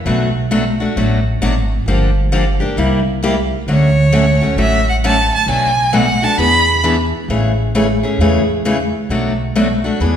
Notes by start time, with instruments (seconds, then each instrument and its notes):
0.05 upright bass B1, steel-string acoustic guitar B2 F#3 A3 D4 F#4
0.51 steel-string acoustic guitar B2 F#3 A3 D4 F#4
0.80 steel-string acoustic guitar A3 D4 F#4
0.96 upright bass A1, steel-string acoustic guitar B2 F#3 A3 D4 F#4
1.41 upright bass G#1, steel-string acoustic guitar B2 F#3 A3 D4 F#4
1.86 upright bass G1, steel-string acoustic guitar D3 F3 A#3 D4 G4
2.32 steel-string acoustic guitar D3 F3 A#3 D4 G4
2.60 steel-string acoustic guitar A#3 D4 G4
2.77 upright bass C2, steel-string acoustic guitar C3 G3 A#3 E4 G4
3.23 steel-string acoustic guitar C3 G3 A#3 E4 G4
3.67 upright bass D2, steel-string acoustic guitar D3 F#3 A3 C#4 F#4, violin C#5
4.12 steel-string acoustic guitar D3 F#3 A3 C#4 F#4
4.41 steel-string acoustic guitar A3 C#4 F#4
4.56 upright bass A1, steel-string acoustic guitar D3 F#3 A3 C#4 F#4, violin E5
4.89 violin F#5
5.04 steel-string acoustic guitar D3 F#3 A3 C#4 F#4, violin A5
5.34 violin A5
5.46 upright bass B1, steel-string acoustic guitar B2 F#3 A3 D4 F#4, violin G#5
5.93 steel-string acoustic guitar B2 F#3 A3 D4 F#4, violin F#5
6.22 steel-string acoustic guitar A3 D4 F#4, violin A5
6.38 upright bass E2, steel-string acoustic guitar E3 B3 D4 G#4, violin B5
6.84 steel-string acoustic guitar E3 B3 D4 G#4
7.28 upright bass A1, steel-string acoustic guitar C#3 E3 A3 C#4 G#4
7.75 steel-string acoustic guitar C#3 E3 A3 C#4 G#4
8.03 steel-string acoustic guitar A3 C#4 G#4
8.18 upright bass E2, steel-string acoustic guitar C#3 E3 A3 C#4 G#4
8.65 steel-string acoustic guitar C#3 E3 A3 C#4 G#4
9.09 upright bass B1, steel-string acoustic guitar B2 F#3 A3 D4 F#4
9.56 steel-string acoustic guitar B2 F#3 A3 D4 F#4
9.84 steel-string acoustic guitar A3 D4 F#4
10.00 upright bass E2, steel-string acoustic guitar E3 B3 D4 G#4